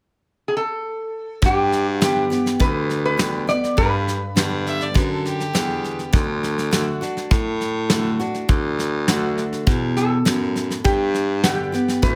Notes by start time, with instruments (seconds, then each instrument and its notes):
0.48 resonator guitar played with a steel bar G#4
0.57 resonator guitar played with a steel bar A4
1.42 steel-string acoustic guitar G2, baritone saxophone G2, resonator guitar played with a steel bar G4, kick, snare
1.72 snare
1.88 resonator guitar played with a steel bar F#4
2.01 steel-string acoustic guitar D3 G3 B3 G4, resonator guitar played with a steel bar G4, snare, hi-hat pedal
2.30 steel-string acoustic guitar B3 G4, snare
2.46 snare
2.60 baritone saxophone D2, steel-string acoustic guitar D3, resonator guitar played with a steel bar B4, kick, snare
2.90 snare
3.06 resonator guitar played with a steel bar B4
3.17 steel-string acoustic guitar D3 G3 B3 G4, snare, hi-hat pedal
3.47 steel-string acoustic guitar B3 G4, resonator guitar played with a steel bar D5, snare
3.64 snare
3.77 steel-string acoustic guitar G2, baritone saxophone G2, resonator guitar played with a steel bar B4, kick, snare
4.07 snare
4.36 baritone saxophone G2, steel-string acoustic guitar D3 G3 B3 G4, snare, hi-hat pedal
4.66 fiddle E5, snare
4.81 fiddle D5, snare
4.94 baritone saxophone F#2, steel-string acoustic guitar D3, fiddle B4, kick, snare
5.12 fiddle A4
5.25 fiddle G4, snare
5.40 snare
5.53 baritone saxophone E2, steel-string acoustic guitar D3 G3 B3 G4, snare, hi-hat pedal
5.84 snare
5.99 snare
6.13 baritone saxophone D2, steel-string acoustic guitar D3, kick, snare
6.43 snare
6.58 snare
6.71 steel-string acoustic guitar D3 A3 D4 F#4, snare, hi-hat pedal
7.01 steel-string acoustic guitar D4 F#4, snare
7.17 snare
7.31 steel-string acoustic guitar A2, baritone saxophone A2, kick, snare
7.61 snare
7.89 steel-string acoustic guitar D3 A3 D4 F#4, snare, hi-hat pedal
8.20 steel-string acoustic guitar D4 F#4, snare
8.34 snare
8.49 baritone saxophone D2, steel-string acoustic guitar D3, kick, snare
8.79 snare
9.08 steel-string acoustic guitar D3 A3 D4 F#4, snare, hi-hat pedal
9.38 snare
9.53 snare
9.67 baritone saxophone E2, steel-string acoustic guitar B2, kick, snare
9.96 resonator guitar played with a steel bar A4, snare
10.25 baritone saxophone F#2, steel-string acoustic guitar A2, snare, hi-hat pedal
10.56 snare
10.70 snare
10.84 steel-string acoustic guitar G2, baritone saxophone G2, resonator guitar played with a steel bar G4, kick, snare
11.14 snare
11.44 steel-string acoustic guitar D3 G3 B3 G4, resonator guitar played with a steel bar G4, snare, hi-hat pedal
11.72 steel-string acoustic guitar B3 G4, snare
11.88 snare
12.02 baritone saxophone D2, steel-string acoustic guitar A2, resonator guitar played with a steel bar B4, kick, snare